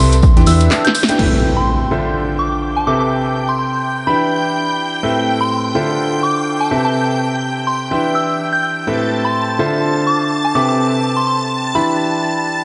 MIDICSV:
0, 0, Header, 1, 7, 480
1, 0, Start_track
1, 0, Key_signature, 0, "minor"
1, 0, Tempo, 480000
1, 1191, Time_signature, 4, 2, 24, 8
1, 12641, End_track
2, 0, Start_track
2, 0, Title_t, "String machine"
2, 0, Program_c, 0, 50
2, 1190, Note_on_c, 0, 79, 82
2, 1190, Note_on_c, 0, 91, 82
2, 8871, Note_on_c, 0, 81, 84
2, 8872, Note_on_c, 0, 93, 84
2, 8881, Note_off_c, 0, 79, 0
2, 8881, Note_off_c, 0, 91, 0
2, 12641, Note_off_c, 0, 81, 0
2, 12641, Note_off_c, 0, 93, 0
2, 12641, End_track
3, 0, Start_track
3, 0, Title_t, "Synth bell"
3, 0, Program_c, 1, 98
3, 0, Note_on_c, 1, 84, 93
3, 148, Note_off_c, 1, 84, 0
3, 470, Note_on_c, 1, 88, 86
3, 819, Note_off_c, 1, 88, 0
3, 847, Note_on_c, 1, 91, 92
3, 913, Note_off_c, 1, 91, 0
3, 950, Note_on_c, 1, 91, 75
3, 1038, Note_off_c, 1, 91, 0
3, 1567, Note_on_c, 1, 84, 82
3, 1911, Note_off_c, 1, 84, 0
3, 2389, Note_on_c, 1, 86, 72
3, 2548, Note_off_c, 1, 86, 0
3, 2765, Note_on_c, 1, 81, 77
3, 2849, Note_off_c, 1, 81, 0
3, 2870, Note_on_c, 1, 86, 83
3, 2957, Note_off_c, 1, 86, 0
3, 3006, Note_on_c, 1, 86, 70
3, 3073, Note_off_c, 1, 86, 0
3, 3486, Note_on_c, 1, 84, 79
3, 3553, Note_off_c, 1, 84, 0
3, 3591, Note_on_c, 1, 84, 65
3, 3678, Note_off_c, 1, 84, 0
3, 4070, Note_on_c, 1, 83, 83
3, 4749, Note_off_c, 1, 83, 0
3, 5407, Note_on_c, 1, 84, 86
3, 5751, Note_off_c, 1, 84, 0
3, 6231, Note_on_c, 1, 86, 78
3, 6388, Note_off_c, 1, 86, 0
3, 6606, Note_on_c, 1, 81, 83
3, 6690, Note_off_c, 1, 81, 0
3, 6847, Note_on_c, 1, 81, 85
3, 6979, Note_off_c, 1, 81, 0
3, 7670, Note_on_c, 1, 84, 83
3, 7828, Note_off_c, 1, 84, 0
3, 8150, Note_on_c, 1, 88, 78
3, 8499, Note_off_c, 1, 88, 0
3, 8526, Note_on_c, 1, 91, 80
3, 8593, Note_off_c, 1, 91, 0
3, 8630, Note_on_c, 1, 91, 71
3, 8718, Note_off_c, 1, 91, 0
3, 9247, Note_on_c, 1, 84, 83
3, 9591, Note_off_c, 1, 84, 0
3, 10070, Note_on_c, 1, 86, 78
3, 10228, Note_off_c, 1, 86, 0
3, 10446, Note_on_c, 1, 81, 80
3, 10530, Note_off_c, 1, 81, 0
3, 10551, Note_on_c, 1, 86, 80
3, 10638, Note_off_c, 1, 86, 0
3, 10687, Note_on_c, 1, 86, 74
3, 10753, Note_off_c, 1, 86, 0
3, 11166, Note_on_c, 1, 84, 81
3, 11233, Note_off_c, 1, 84, 0
3, 11270, Note_on_c, 1, 84, 71
3, 11358, Note_off_c, 1, 84, 0
3, 11750, Note_on_c, 1, 83, 84
3, 12429, Note_off_c, 1, 83, 0
3, 12641, End_track
4, 0, Start_track
4, 0, Title_t, "Grand piano"
4, 0, Program_c, 2, 0
4, 0, Note_on_c, 2, 60, 83
4, 0, Note_on_c, 2, 67, 77
4, 0, Note_on_c, 2, 69, 74
4, 0, Note_on_c, 2, 71, 75
4, 0, Note_on_c, 2, 76, 87
4, 134, Note_off_c, 2, 71, 0
4, 135, Note_off_c, 2, 60, 0
4, 135, Note_off_c, 2, 67, 0
4, 135, Note_off_c, 2, 69, 0
4, 135, Note_off_c, 2, 76, 0
4, 368, Note_on_c, 2, 52, 91
4, 368, Note_on_c, 2, 62, 85
4, 368, Note_on_c, 2, 71, 81
4, 368, Note_on_c, 2, 79, 100
4, 369, Note_on_c, 2, 64, 83
4, 369, Note_on_c, 2, 67, 84
4, 451, Note_off_c, 2, 52, 0
4, 451, Note_off_c, 2, 62, 0
4, 451, Note_off_c, 2, 64, 0
4, 451, Note_off_c, 2, 67, 0
4, 451, Note_off_c, 2, 71, 0
4, 451, Note_off_c, 2, 79, 0
4, 472, Note_on_c, 2, 52, 95
4, 472, Note_on_c, 2, 62, 93
4, 472, Note_on_c, 2, 64, 87
4, 472, Note_on_c, 2, 67, 89
4, 472, Note_on_c, 2, 71, 89
4, 472, Note_on_c, 2, 76, 106
4, 686, Note_off_c, 2, 52, 0
4, 686, Note_off_c, 2, 64, 0
4, 686, Note_off_c, 2, 67, 0
4, 686, Note_off_c, 2, 71, 0
4, 686, Note_off_c, 2, 76, 0
4, 687, Note_off_c, 2, 62, 0
4, 712, Note_on_c, 2, 52, 74
4, 712, Note_on_c, 2, 62, 71
4, 712, Note_on_c, 2, 64, 71
4, 712, Note_on_c, 2, 67, 67
4, 712, Note_on_c, 2, 71, 69
4, 712, Note_on_c, 2, 81, 82
4, 854, Note_off_c, 2, 62, 0
4, 854, Note_off_c, 2, 64, 0
4, 854, Note_off_c, 2, 71, 0
4, 855, Note_off_c, 2, 52, 0
4, 855, Note_off_c, 2, 67, 0
4, 855, Note_off_c, 2, 81, 0
4, 1088, Note_on_c, 2, 62, 77
4, 1088, Note_on_c, 2, 64, 72
4, 1088, Note_on_c, 2, 67, 71
4, 1088, Note_on_c, 2, 71, 71
4, 1088, Note_on_c, 2, 79, 84
4, 1176, Note_off_c, 2, 62, 0
4, 1176, Note_off_c, 2, 64, 0
4, 1176, Note_off_c, 2, 67, 0
4, 1176, Note_off_c, 2, 71, 0
4, 1176, Note_off_c, 2, 79, 0
4, 1192, Note_on_c, 2, 45, 68
4, 1192, Note_on_c, 2, 60, 61
4, 1192, Note_on_c, 2, 67, 63
4, 1192, Note_on_c, 2, 69, 60
4, 1192, Note_on_c, 2, 71, 60
4, 1192, Note_on_c, 2, 76, 72
4, 1886, Note_off_c, 2, 45, 0
4, 1886, Note_off_c, 2, 60, 0
4, 1886, Note_off_c, 2, 67, 0
4, 1886, Note_off_c, 2, 71, 0
4, 1886, Note_off_c, 2, 76, 0
4, 1887, Note_off_c, 2, 69, 0
4, 1911, Note_on_c, 2, 65, 64
4, 1912, Note_on_c, 2, 50, 72
4, 1912, Note_on_c, 2, 62, 64
4, 1912, Note_on_c, 2, 69, 63
4, 1912, Note_on_c, 2, 72, 63
4, 1912, Note_on_c, 2, 76, 78
4, 2846, Note_off_c, 2, 50, 0
4, 2846, Note_off_c, 2, 62, 0
4, 2846, Note_off_c, 2, 65, 0
4, 2846, Note_off_c, 2, 69, 0
4, 2846, Note_off_c, 2, 72, 0
4, 2846, Note_off_c, 2, 76, 0
4, 2872, Note_on_c, 2, 48, 69
4, 2872, Note_on_c, 2, 60, 63
4, 2872, Note_on_c, 2, 67, 62
4, 2872, Note_on_c, 2, 69, 64
4, 2872, Note_on_c, 2, 71, 61
4, 2872, Note_on_c, 2, 76, 73
4, 4046, Note_off_c, 2, 48, 0
4, 4046, Note_off_c, 2, 60, 0
4, 4046, Note_off_c, 2, 67, 0
4, 4047, Note_off_c, 2, 69, 0
4, 4047, Note_off_c, 2, 71, 0
4, 4047, Note_off_c, 2, 76, 0
4, 4072, Note_on_c, 2, 52, 69
4, 4072, Note_on_c, 2, 62, 63
4, 4072, Note_on_c, 2, 64, 65
4, 4072, Note_on_c, 2, 67, 61
4, 4072, Note_on_c, 2, 71, 64
4, 4072, Note_on_c, 2, 76, 79
4, 5006, Note_off_c, 2, 52, 0
4, 5006, Note_off_c, 2, 62, 0
4, 5006, Note_off_c, 2, 64, 0
4, 5006, Note_off_c, 2, 67, 0
4, 5006, Note_off_c, 2, 71, 0
4, 5006, Note_off_c, 2, 76, 0
4, 5032, Note_on_c, 2, 60, 62
4, 5032, Note_on_c, 2, 67, 66
4, 5032, Note_on_c, 2, 69, 63
4, 5032, Note_on_c, 2, 71, 65
4, 5032, Note_on_c, 2, 76, 76
4, 5033, Note_on_c, 2, 45, 68
4, 5727, Note_off_c, 2, 45, 0
4, 5727, Note_off_c, 2, 60, 0
4, 5727, Note_off_c, 2, 67, 0
4, 5727, Note_off_c, 2, 69, 0
4, 5727, Note_off_c, 2, 71, 0
4, 5727, Note_off_c, 2, 76, 0
4, 5751, Note_on_c, 2, 50, 73
4, 5751, Note_on_c, 2, 62, 63
4, 5751, Note_on_c, 2, 65, 65
4, 5751, Note_on_c, 2, 69, 66
4, 5751, Note_on_c, 2, 72, 65
4, 5752, Note_on_c, 2, 76, 77
4, 6686, Note_off_c, 2, 50, 0
4, 6686, Note_off_c, 2, 62, 0
4, 6686, Note_off_c, 2, 65, 0
4, 6686, Note_off_c, 2, 69, 0
4, 6686, Note_off_c, 2, 72, 0
4, 6686, Note_off_c, 2, 76, 0
4, 6712, Note_on_c, 2, 60, 63
4, 6712, Note_on_c, 2, 67, 64
4, 6712, Note_on_c, 2, 69, 65
4, 6712, Note_on_c, 2, 71, 65
4, 6713, Note_on_c, 2, 48, 67
4, 6713, Note_on_c, 2, 76, 78
4, 7887, Note_off_c, 2, 48, 0
4, 7887, Note_off_c, 2, 60, 0
4, 7887, Note_off_c, 2, 67, 0
4, 7887, Note_off_c, 2, 69, 0
4, 7887, Note_off_c, 2, 71, 0
4, 7887, Note_off_c, 2, 76, 0
4, 7913, Note_on_c, 2, 52, 68
4, 7913, Note_on_c, 2, 62, 61
4, 7913, Note_on_c, 2, 64, 65
4, 7913, Note_on_c, 2, 67, 62
4, 7913, Note_on_c, 2, 71, 63
4, 7913, Note_on_c, 2, 76, 74
4, 8847, Note_off_c, 2, 52, 0
4, 8847, Note_off_c, 2, 62, 0
4, 8847, Note_off_c, 2, 64, 0
4, 8847, Note_off_c, 2, 67, 0
4, 8847, Note_off_c, 2, 71, 0
4, 8847, Note_off_c, 2, 76, 0
4, 8872, Note_on_c, 2, 45, 68
4, 8872, Note_on_c, 2, 60, 64
4, 8872, Note_on_c, 2, 67, 66
4, 8872, Note_on_c, 2, 69, 63
4, 8872, Note_on_c, 2, 71, 61
4, 8872, Note_on_c, 2, 76, 76
4, 9567, Note_off_c, 2, 45, 0
4, 9567, Note_off_c, 2, 60, 0
4, 9567, Note_off_c, 2, 67, 0
4, 9567, Note_off_c, 2, 69, 0
4, 9567, Note_off_c, 2, 71, 0
4, 9567, Note_off_c, 2, 76, 0
4, 9592, Note_on_c, 2, 50, 72
4, 9592, Note_on_c, 2, 62, 62
4, 9592, Note_on_c, 2, 65, 64
4, 9592, Note_on_c, 2, 69, 64
4, 9592, Note_on_c, 2, 72, 66
4, 9592, Note_on_c, 2, 76, 76
4, 10526, Note_off_c, 2, 50, 0
4, 10526, Note_off_c, 2, 62, 0
4, 10526, Note_off_c, 2, 65, 0
4, 10526, Note_off_c, 2, 69, 0
4, 10526, Note_off_c, 2, 72, 0
4, 10526, Note_off_c, 2, 76, 0
4, 10551, Note_on_c, 2, 48, 66
4, 10551, Note_on_c, 2, 60, 64
4, 10551, Note_on_c, 2, 69, 64
4, 10551, Note_on_c, 2, 71, 65
4, 10551, Note_on_c, 2, 76, 79
4, 10552, Note_on_c, 2, 67, 67
4, 11726, Note_off_c, 2, 48, 0
4, 11726, Note_off_c, 2, 60, 0
4, 11726, Note_off_c, 2, 67, 0
4, 11726, Note_off_c, 2, 69, 0
4, 11726, Note_off_c, 2, 71, 0
4, 11726, Note_off_c, 2, 76, 0
4, 11750, Note_on_c, 2, 62, 64
4, 11750, Note_on_c, 2, 67, 66
4, 11751, Note_on_c, 2, 52, 74
4, 11751, Note_on_c, 2, 64, 67
4, 11751, Note_on_c, 2, 71, 63
4, 11751, Note_on_c, 2, 76, 79
4, 12641, Note_off_c, 2, 52, 0
4, 12641, Note_off_c, 2, 62, 0
4, 12641, Note_off_c, 2, 64, 0
4, 12641, Note_off_c, 2, 67, 0
4, 12641, Note_off_c, 2, 71, 0
4, 12641, Note_off_c, 2, 76, 0
4, 12641, End_track
5, 0, Start_track
5, 0, Title_t, "FM bass"
5, 0, Program_c, 3, 39
5, 0, Note_on_c, 3, 36, 97
5, 340, Note_off_c, 3, 36, 0
5, 366, Note_on_c, 3, 40, 93
5, 450, Note_off_c, 3, 40, 0
5, 470, Note_on_c, 3, 40, 100
5, 690, Note_off_c, 3, 40, 0
5, 12641, End_track
6, 0, Start_track
6, 0, Title_t, "Impact"
6, 0, Program_c, 4, 103
6, 1190, Note_on_c, 4, 60, 65
6, 3111, Note_off_c, 4, 60, 0
6, 12641, End_track
7, 0, Start_track
7, 0, Title_t, "Drums"
7, 122, Note_on_c, 9, 54, 49
7, 123, Note_on_c, 9, 38, 49
7, 128, Note_on_c, 9, 42, 73
7, 222, Note_off_c, 9, 54, 0
7, 223, Note_off_c, 9, 38, 0
7, 224, Note_on_c, 9, 54, 34
7, 228, Note_off_c, 9, 42, 0
7, 230, Note_on_c, 9, 42, 83
7, 231, Note_on_c, 9, 36, 112
7, 324, Note_off_c, 9, 54, 0
7, 330, Note_off_c, 9, 42, 0
7, 331, Note_off_c, 9, 36, 0
7, 368, Note_on_c, 9, 42, 37
7, 370, Note_on_c, 9, 38, 48
7, 462, Note_off_c, 9, 42, 0
7, 462, Note_on_c, 9, 42, 72
7, 463, Note_on_c, 9, 54, 84
7, 470, Note_off_c, 9, 38, 0
7, 471, Note_on_c, 9, 46, 106
7, 562, Note_off_c, 9, 42, 0
7, 563, Note_off_c, 9, 54, 0
7, 571, Note_off_c, 9, 46, 0
7, 600, Note_on_c, 9, 38, 51
7, 607, Note_on_c, 9, 42, 69
7, 609, Note_on_c, 9, 54, 45
7, 700, Note_off_c, 9, 38, 0
7, 704, Note_on_c, 9, 38, 109
7, 707, Note_off_c, 9, 42, 0
7, 708, Note_on_c, 9, 39, 119
7, 709, Note_off_c, 9, 54, 0
7, 710, Note_off_c, 9, 38, 0
7, 710, Note_on_c, 9, 38, 66
7, 714, Note_on_c, 9, 42, 75
7, 720, Note_on_c, 9, 54, 37
7, 808, Note_off_c, 9, 39, 0
7, 810, Note_off_c, 9, 38, 0
7, 814, Note_off_c, 9, 42, 0
7, 820, Note_off_c, 9, 54, 0
7, 846, Note_on_c, 9, 42, 56
7, 871, Note_on_c, 9, 38, 81
7, 945, Note_off_c, 9, 38, 0
7, 945, Note_on_c, 9, 38, 36
7, 946, Note_off_c, 9, 42, 0
7, 946, Note_on_c, 9, 54, 90
7, 949, Note_on_c, 9, 42, 64
7, 951, Note_on_c, 9, 46, 89
7, 1031, Note_off_c, 9, 38, 0
7, 1031, Note_on_c, 9, 38, 96
7, 1046, Note_off_c, 9, 54, 0
7, 1049, Note_off_c, 9, 42, 0
7, 1051, Note_off_c, 9, 46, 0
7, 1081, Note_on_c, 9, 54, 50
7, 1086, Note_off_c, 9, 38, 0
7, 1086, Note_on_c, 9, 38, 108
7, 1088, Note_on_c, 9, 42, 66
7, 1092, Note_off_c, 9, 42, 0
7, 1092, Note_on_c, 9, 42, 72
7, 1181, Note_off_c, 9, 54, 0
7, 1186, Note_off_c, 9, 38, 0
7, 1192, Note_off_c, 9, 42, 0
7, 1192, Note_on_c, 9, 49, 75
7, 1292, Note_off_c, 9, 49, 0
7, 12641, End_track
0, 0, End_of_file